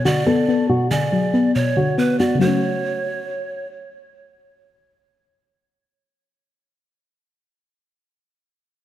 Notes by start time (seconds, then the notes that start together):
Already playing: B2 F#3 B3
0.05 D3 F#4 D5
0.26 B3 A4
0.48 B3
0.69 B2 F#4
0.91 D3 G#4 D5
1.12 F#3
1.34 B3
1.55 B2 C#5
1.77 D3 F#4
1.98 B3 B4
2.19 B3 F#4 D5
2.35 C#3
2.39 F#3 F#4 C#5
2.43 A3 C#4